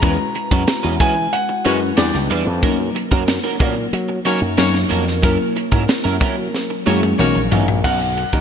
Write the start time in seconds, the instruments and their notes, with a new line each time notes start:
Already playing: grand piano A#5
0.02 slap bass E2, clean electric guitar G#3 C#4 F#4 B4, fm electric piano G#3 C#4 E4 F#4 A#4, kick, closed hi-hat
0.10 fm electric piano B4
0.19 muted clean electric guitar stroke
0.35 muted clean electric guitar stroke, closed hi-hat
0.51 slap bass F#2, clean electric guitar G#3 C#4 F#4 B4, kick
0.68 muted clean electric guitar stroke, snare, closed hi-hat
0.83 slap bass E2, clean electric guitar G#3 C#4 F#4 B4
1.00 slap bass E3, clean electric guitar G#3 C#4 F#4 B4, grand piano G#5, kick, closed hi-hat
1.16 muted clean electric guitar stroke
1.33 grand piano F#5, closed hi-hat
1.49 muted clean electric guitar stroke
1.65 slap bass F#2, clean electric guitar G#3 C#4 F#4 B4, fm electric piano G#3 C#4 E4 F#4 B4, horn section G#3 C#4 F#4 C#5, closed hi-hat
1.81 muted clean electric guitar stroke
1.97 slap bass E2, fm electric piano G3 B3 D4 E4 B4, horn section B3 D4 G4 D5, muted clean electric guitar stroke, snare, closed hi-hat
2.14 slap bass C#2, muted clean electric guitar stroke, snare
2.30 slap bass E2, clean electric guitar G3 D4 E4 B4, closed hi-hat
2.47 slap bass F2, muted clean electric guitar stroke
2.62 slap bass F#2, fm electric piano F#3 A#3 C#4 D#4 A#4, clean electric guitar A#3 C#4 F#4 A#4, kick, closed hi-hat
2.95 muted clean electric guitar stroke, closed hi-hat
3.11 slap bass F#2, clean electric guitar A#3 C#4 F#4 A#4, kick
3.27 muted clean electric guitar stroke, snare, closed hi-hat
3.44 clean electric guitar A#3 C#4 F#4 A#4
3.59 slap bass A#2, clean electric guitar A#3 C#4 F#4 A#4, kick, closed hi-hat
3.76 muted clean electric guitar stroke
3.93 slap bass F#3, closed hi-hat
4.09 muted clean electric guitar stroke
4.25 fm electric piano F#3 A#3 C#4 D#4 A#4, clean electric guitar A#3 C#4 F#4 A#4, horn section A#3 C#4 F#4 C#5, closed hi-hat
4.42 slap bass F#2, muted clean electric guitar stroke
4.57 slap bass F#2, fm electric piano F#3 A#3 C#4 D#4 A#4, horn section A#3 C#4 F#4 C#5, muted clean electric guitar stroke, snare, closed hi-hat
4.74 muted clean electric guitar stroke, snare
4.89 slap bass F2, clean electric guitar A#3 C#4 F#4 A#4, closed hi-hat
5.06 muted clean electric guitar stroke, snare
5.22 slap bass F#2, clean electric guitar F#3 C#4 E4 A#4, fm electric piano F#3 A#3 C#4 E4 A#4, kick, closed hi-hat
5.39 muted clean electric guitar stroke
5.56 muted clean electric guitar stroke, closed hi-hat
5.72 slap bass G#2, clean electric guitar F#3 C#4 E4 A#4, kick
5.88 muted clean electric guitar stroke, snare, closed hi-hat
6.04 slap bass F#2, clean electric guitar F#3 C#4 E4 A#4
6.20 clean electric guitar F#3 C#4 E4 A#4, slap bass F#3, kick, closed hi-hat
6.37 muted clean electric guitar stroke
6.54 snare
6.70 muted clean electric guitar stroke
6.86 slap bass F#2, clean electric guitar F#3 C#4 E4 A#4, fm electric piano F#3 A#3 C#4 E4 G#4, horn section A#3 C#4 F#4 C#5, high tom
7.03 muted clean electric guitar stroke, high tom
7.18 slap bass B1, fm electric piano F#3 B3 C#4 D#4 A#4, horn section A#3 C#4 F#4 C#5, muted clean electric guitar stroke, mid tom
7.35 slap bass A#1, muted clean electric guitar stroke
7.51 slap bass A1, clean electric guitar F#3 C#4 D#4 A#4, floor tom
7.68 slap bass A#1, muted clean electric guitar stroke, floor tom
7.84 slap bass B1, fm electric piano F#3 B3 C#4 D#4 A#4, clean electric guitar F#3 C#4 D#4 A#4, grand piano F#5, kick, crash
8.01 muted clean electric guitar stroke, closed hi-hat
8.17 muted clean electric guitar stroke, closed hi-hat
8.33 slap bass D#2, clean electric guitar F#3 C#4 D#4 A#4, kick, closed hi-hat